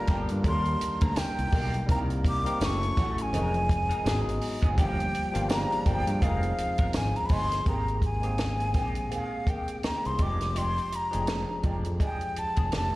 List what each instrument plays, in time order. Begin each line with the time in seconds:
Already playing: tine electric piano G3 A#3 D4 F4 A4 A#4, flute A#5
0.07 fingered electric bass G1, clean electric guitar F3 A#3 D4 G4, kick, snare, closed hi-hat
0.29 fingered electric bass G2, muted clean electric guitar stroke, closed hi-hat
0.43 fingered electric bass D#2, clean electric guitar G3 A#3 D4 A#4, tine electric piano G3 A#3 D4 D#4 A#4, kick, closed hi-hat
0.48 flute C6
0.65 closed hi-hat
0.80 muted clean electric guitar stroke, muted fingered electric bass stroke, closed hi-hat
1.01 fingered electric bass D2, clean electric guitar G3 A#3 D4 A#4, flute A#5, kick, closed hi-hat
1.16 flute G5, snare, closed hi-hat, tambourine
1.37 fingered electric bass C2, muted clean electric guitar stroke, closed hi-hat
1.52 fingered electric bass B1, clean electric guitar G3 A#3 D4 G4, kick, open hi-hat
1.73 muted clean electric guitar stroke, closed hi-hat
1.86 fingered electric bass C2, clean electric guitar D#3 A#3 C4 G4, tine electric piano G3 A#3 C4 D#4 A#4, kick, closed hi-hat
1.91 flute A#5
2.10 closed hi-hat
2.25 flute D6, muted clean electric guitar stroke, kick, closed hi-hat
2.44 clean electric guitar D#3 A#3 C4 G4, tine electric piano G3 A#3 C4 D#4 A#4, closed hi-hat
2.59 fingered electric bass F#1, tine electric piano F#3 A3 C#4 E4 G#4, snare, closed hi-hat, tambourine
2.64 flute C#6
2.69 tine electric piano A4
2.81 muted clean electric guitar stroke, closed hi-hat
2.97 fingered electric bass A1, clean electric guitar E3 A3 C#4 F#4, kick, snare, closed hi-hat
3.18 flute G#5, muted clean electric guitar stroke, closed hi-hat
3.32 fingered electric bass F1, tine electric piano F3 G#3 C4 D#4 G#4, clean electric guitar G#3 C4 D#4 A#4, closed hi-hat
3.54 closed hi-hat
3.69 muted clean electric guitar stroke, kick, closed hi-hat
3.89 clean electric guitar G#3 C4 D#4 A#4, closed hi-hat
4.04 fingered electric bass G#1, tine electric piano F#3 G#3 B3 D#4 G#4, muted clean electric guitar stroke, snare, closed hi-hat, tambourine
4.26 fingered electric bass G#1, muted clean electric guitar stroke, closed hi-hat
4.41 open hi-hat
4.62 fingered electric bass F#1, clean electric guitar F#3 B3 D#4 G#4, kick, closed hi-hat
4.75 fingered electric bass G1, tine electric piano F3 G3 A#3 D4 G4, clean electric guitar F3 A#3 D4 G4, flute G5, kick, closed hi-hat
5.00 closed hi-hat
5.13 muted clean electric guitar stroke, closed hi-hat
5.32 fingered electric bass G1, tine electric piano F3 G3 A#3 D4 F4, clean electric guitar F3 A#3 D4 G4, closed hi-hat
5.48 tine electric piano F3 G3 A#3 D4 G#4, flute A#5, snare, closed hi-hat, tambourine
5.58 tine electric piano A#4
5.70 muted clean electric guitar stroke, closed hi-hat
5.85 fingered electric bass G1, clean electric guitar F3 A#3 D4 G4, flute G5, kick, closed hi-hat
6.06 fingered electric bass G2, muted clean electric guitar stroke, closed hi-hat
6.20 fingered electric bass F1, tine electric piano F3 G#3 C4 D#4 G#4, clean electric guitar G#3 C4 D#4 A#4, flute F5, kick, closed hi-hat
6.43 closed hi-hat
6.58 muted clean electric guitar stroke, muted fingered electric bass stroke, closed hi-hat
6.78 fingered electric bass G1, clean electric guitar G#3 C4 D#4 A#4, kick, closed hi-hat
6.93 fingered electric bass G#1, flute G#5, snare, closed hi-hat, tambourine
7.15 flute A#5, muted clean electric guitar stroke, closed hi-hat
7.26 flute B5, open hi-hat
7.30 fingered electric bass G1, clean electric guitar G#3 C4 D#4 G#4, flute C6, kick
7.51 muted clean electric guitar stroke, snare, closed hi-hat
7.64 fingered electric bass G#1, clean electric guitar D#3 A#3 C4 G4, tine electric piano A#3 C4 G4 G#4, kick, closed hi-hat
7.68 flute A#5
7.88 closed hi-hat
8.02 flute G#5, muted clean electric guitar stroke, kick, closed hi-hat
8.21 tine electric piano G#3 A#3 C4 G#4, clean electric guitar A#3 C4 G4, closed hi-hat
8.25 clean electric guitar D#3
8.38 snare, closed hi-hat
8.59 muted clean electric guitar stroke, closed hi-hat
8.74 fingered electric bass A#1, clean electric guitar D#3 A#3 C4 G4, kick, snare, closed hi-hat
8.95 muted clean electric guitar stroke, closed hi-hat
9.10 clean electric guitar D#3 A#3 C4 G#4, closed hi-hat
9.14 flute F5
9.31 muted clean electric guitar stroke
9.46 clean electric guitar D#3 A#3 C4 G4, flute G5, kick, closed hi-hat
9.67 muted clean electric guitar stroke, closed hi-hat
9.83 flute A#5, muted fingered electric bass stroke, snare, closed hi-hat
10.02 fingered electric bass C2, tine electric piano G3 A#3 C4 G#4, muted clean electric guitar stroke, closed hi-hat
10.06 flute C6
10.17 fingered electric bass F1, tine electric piano F3 G3 D4 G4, clean electric guitar F3 G#3 D4 G4, kick, closed hi-hat
10.22 tine electric piano G#3, flute D6
10.40 muted clean electric guitar stroke, snare, closed hi-hat
10.50 flute D6
10.55 clean electric guitar F3 G#3 D4 G4, flute C6, closed hi-hat
10.78 closed hi-hat
10.91 muted clean electric guitar stroke, closed hi-hat
10.95 flute A#5
11.11 fingered electric bass F1, tine electric piano F3 G#3 D4 G#4, clean electric guitar F3 G#3 D4 G4, closed hi-hat
11.27 snare, closed hi-hat
11.48 muted clean electric guitar stroke
11.63 fingered electric bass F1, clean electric guitar F3 G#3 D4 G4, kick, closed hi-hat
11.84 fingered electric bass F2, muted clean electric guitar stroke, closed hi-hat
11.99 clean electric guitar F3 G#3 D4 G#4, kick, closed hi-hat
12.05 flute G5
12.21 closed hi-hat
12.36 flute A5, muted clean electric guitar stroke, muted fingered electric bass stroke, closed hi-hat
12.56 fingered electric bass F1, clean electric guitar F3 G#3 D4 G#4, kick, closed hi-hat
12.70 fingered electric bass F1, tine electric piano D#3 A3 D4 G4, snare, closed hi-hat
12.76 flute A5
12.92 tine electric piano D#3 A3